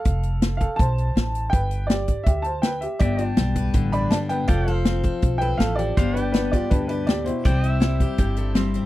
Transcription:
Already playing: A4 F5
0.05 F1, kick, closed hi-hat
0.23 closed hi-hat
0.42 snare, closed hi-hat
0.57 A4 F5, kick, closed hi-hat
0.76 B1 C5 A5, kick, closed hi-hat
0.98 closed hi-hat
1.16 A1, snare, closed hi-hat
1.35 closed hi-hat
1.50 G1 B4 G5, kick, closed hi-hat
1.71 closed hi-hat
1.87 G4 D5, snare, closed hi-hat
2.08 kick, closed hi-hat
2.24 D2 G4 E5, kick, closed hi-hat
2.42 C5 A5, closed hi-hat
2.62 B4 G5, snare, closed hi-hat
2.81 G4 E5, closed hi-hat
2.99 G1 G2 B3 G4 D5 E5 G5, kick, closed hi-hat
3.17 D4 F4 D5, closed hi-hat
3.26 D5
3.37 B1 G3, snare, closed hi-hat
3.56 B4, kick, closed hi-hat
3.74 A1 D3, kick, closed hi-hat
3.92 D4 D5 B5, closed hi-hat
4.11 G1 G3 D5 A5, snare, closed hi-hat
4.29 B3 B4 G5, closed hi-hat
4.48 F1 F3 F4 A4 D5 F5 G5, kick, closed hi-hat
4.65 A4 F5, closed hi-hat
4.73 C5 F5
4.85 C4, snare, closed hi-hat
5.04 A4, kick, closed hi-hat
5.22 B1, kick, closed hi-hat
5.38 A4 B4 G5, closed hi-hat
5.58 A1 E3 A4 F5, snare, closed hi-hat
5.76 F3 G4 D5, closed hi-hat
5.97 G1 G2 B3 D4 G4 C5 F5, kick, closed hi-hat
6.14 D4 G4 B4, closed hi-hat
6.22 D5 G5
6.32 B3 D4 B4, snare, closed hi-hat
6.52 F4 G4 D5, kick, closed hi-hat
6.70 D2 G2 D4 B4, kick, closed hi-hat
6.88 D4 G4 B4, closed hi-hat
7.07 A2 G4 D5, snare, closed hi-hat
7.25 B2 E4 C5, closed hi-hat
7.45 C2 C3 G3 C4 E4 G4 D5 G5, kick, closed hi-hat
7.64 E4, closed hi-hat
7.70 E5
7.80 G3 E4, snare, closed hi-hat
8.00 G4, kick, closed hi-hat
8.18 G1 G2 G4, kick, closed hi-hat
8.36 E4 A4, closed hi-hat
8.55 G3 C4, snare, closed hi-hat
8.74 C4, closed hi-hat

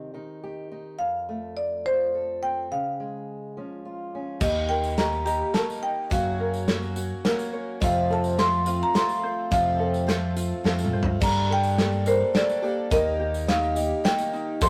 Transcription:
Already playing: C3 D#3 C4 D#4 G4 D#5
0.14 D#3 D#4
0.43 G4
0.72 D#4
0.99 F2 F5
1.29 A3
1.57 D5
1.85 F3 C4 C5
2.15 A4
2.43 C4 G5
2.71 C#3 F5
3.00 G#3
3.57 F3 C#4
3.85 F4
4.15 C#4
4.40 D#2 D#3 A#3 D#4 G4 D#5, kick, crash, tambourine
4.69 A#4 G5, tambourine
4.84 tambourine
4.97 D#3 A#3 D#4 G4 A#5, snare, closed hi-hat
5.12 tambourine
5.25 A#3 D#4 G4 A#5, tambourine
5.53 D#3 A#3 D#4 G4 A#4 A5, snare, closed hi-hat, tambourine
5.70 tambourine
5.83 D#5 G5
6.10 F#2 C#3 F#3 A#3 C#4 F#4 F5, kick, closed hi-hat, tambourine
6.40 A#4
6.54 tambourine
6.68 F#3 A#3 C#4 F#4 C#5, snare, closed hi-hat
6.83 tambourine
6.96 F#4, tambourine
7.24 F#3 A#3 C#4 F#4 A#4, snare, closed hi-hat, tambourine
7.39 tambourine
7.53 C#5
7.80 F2 C3 F3 A3 C4 F4 F5, kick, closed hi-hat, tambourine
8.10 A4 A5, tambourine
8.24 tambourine
8.37 F3 A3 C4 F4 C6, snare, closed hi-hat
8.52 tambourine
8.65 F3 A3 C4 F4, tambourine
8.83 A#5
8.94 F3 A3 C4 F4 A4 C6, snare, closed hi-hat, tambourine
9.09 tambourine
9.23 C5
9.51 F2 C3 F3 A3 C4 F4 F5, kick, closed hi-hat, tambourine
9.80 A4
9.94 tambourine
10.07 F3 A3 C4 F4 C5, snare, closed hi-hat
10.36 F4, tambourine
10.64 F2 F3 A3 C4 F4 A4, snare
10.79 tambourine
10.85 mid tom
10.93 G2 C5
11.03 floor tom
11.20 G2 D3 G3 A#3 D4 A4 A#5, kick, crash, tambourine
11.50 A4 G5
11.63 tambourine
11.77 G3 A#3 D4 G4 A4, snare, closed hi-hat
11.92 tambourine
12.05 G3 A#3 D4 A4 A#4 C5, tambourine
12.34 G3 A#3 D4 A4 D5, snare, closed hi-hat
12.49 tambourine
12.62 G3 A#3 D4 G4 A4, tambourine
12.90 D#2 D#3 A#3 D#4 G4 A#4 D#5, kick, closed hi-hat, tambourine
13.20 G4
13.34 tambourine
13.47 D#3 A#3 D#4 G4 F5, snare, closed hi-hat
13.63 tambourine
13.75 A#3 D#4 G4, tambourine
14.04 D#3 A#3 D#4 G4 G5, snare, closed hi-hat
14.18 tambourine
14.33 D#4, tambourine
14.61 F2 C3 G3 A3 C4 F4 A4 C6, kick, closed hi-hat, tambourine

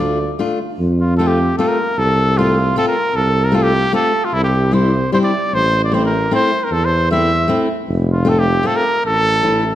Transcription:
Already playing: D2 A3 D5
0.00 A3 D4 F4
0.39 A3 D4 F4
0.79 F2
1.01 F4
1.17 A3 C4 F4 A4
1.28 G4
1.58 A3 C4 F4 A4
1.68 A#4
1.98 C2 A4
2.38 A3 C4 F4
2.76 A3 C4 F4 A4
2.88 A#4
3.15 C2 A4
3.45 A#4
3.52 A3 C4 F4 A4
3.63 G4
3.93 A3 C4 F4 A4
4.25 F4
4.33 C2 E4
4.44 G4
4.71 G3 C4 E4 C5
5.12 G3 C4 E4 C5
5.24 D5
5.53 A1 C5
5.84 D5
5.92 A3 C4 E4 C5
6.06 A#4
6.31 A3 C4 E4 C5
6.64 A#4
6.71 E2 A4
6.85 C5
7.10 A3 C4 E4 E5
7.48 A3 C4 E4
7.88 F1
8.12 F4
8.25 A3 C4 F4 A4
8.39 G4
8.63 A3 C4 F4 A4
8.76 A#4
9.05 A1 A4
9.43 A3 C#4 E4

